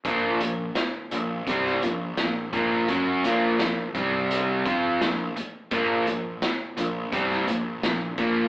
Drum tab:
HH |x-x-x-x-x-x-x-x-|x-x-x-x-x-x-x-x-|x-x-x-x-x-x-x-x-|
SD |----o----o--o---|----o-------o---|----o----o--o---|
BD |o-------o-----o-|o-----o---o-----|o-------o-----o-|